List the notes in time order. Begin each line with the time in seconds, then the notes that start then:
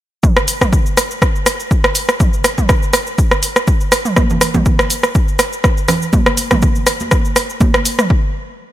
0.23 kick, mid tom, shaker
0.37 cross-stick, shaker
0.48 open hi-hat, shaker
0.61 kick, cross-stick, mid tom, shaker
0.73 kick, shaker
0.86 shaker
0.97 cross-stick, open hi-hat, shaker
1.11 shaker
1.22 kick, cross-stick, shaker
1.36 shaker
1.46 cross-stick, open hi-hat, shaker
1.60 shaker
1.71 kick, shaker
1.84 cross-stick, shaker
1.95 open hi-hat, shaker
2.09 cross-stick, shaker
2.20 kick, mid tom, shaker
2.33 shaker
2.44 cross-stick, open hi-hat, shaker
2.58 kick, mid tom, shaker
2.69 kick, cross-stick, shaker
2.83 shaker
2.93 cross-stick, open hi-hat, shaker
3.07 shaker
3.18 kick, shaker
3.31 cross-stick, shaker
3.43 open hi-hat, shaker
3.56 cross-stick, shaker
3.67 kick, shaker
3.81 shaker
3.92 cross-stick, open hi-hat, shaker
4.05 mid tom, shaker
4.16 kick, cross-stick, mid tom, high conga, shaker
4.30 low conga, shaker
4.41 cross-stick, open hi-hat, shaker
4.54 kick, mid tom, high conga, low conga, shaker
4.66 kick, shaker
4.79 cross-stick, shaker
4.90 open hi-hat, shaker
5.03 cross-stick, shaker
5.15 kick, shaker
5.28 shaker
5.39 cross-stick, open hi-hat, shaker
5.53 shaker
5.64 kick, cross-stick, shaker
5.78 shaker
5.88 cross-stick, open hi-hat, low conga, shaker
6.02 shaker
6.13 kick, mid tom, high conga, shaker
6.26 cross-stick, shaker
6.37 open hi-hat, shaker
6.51 kick, cross-stick, mid tom, high conga, low conga, shaker
6.62 kick, shaker
6.75 shaker
6.87 cross-stick, open hi-hat, shaker
7.00 high conga, shaker
7.11 kick, cross-stick, high conga, shaker
7.25 shaker
7.36 cross-stick, open hi-hat, shaker
7.50 shaker
7.60 kick, high conga, shaker
7.74 cross-stick, shaker
7.85 open hi-hat, shaker
7.99 cross-stick, mid tom, shaker
8.10 kick